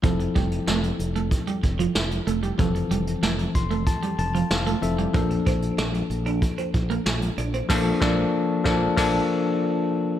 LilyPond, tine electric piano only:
\new Staff \with { instrumentName = "Tine electric piano" } { \time 4/4 \key f \major \tempo 4 = 94 << { r1 | r4. c'''8 a''8 a''8 f''8 e''8 | r1 | r1 | } \\ { <f c' e' a'>1 | <e f c' a'>2.~ <e f c' a'>8 <f c' e' a'>8 | <f bes d' a'>1 | <f bes d' a'>8 <f bes d' a'>8 r8 <f bes d' a'>8 <f bes d' a'>8 r4. | } >> }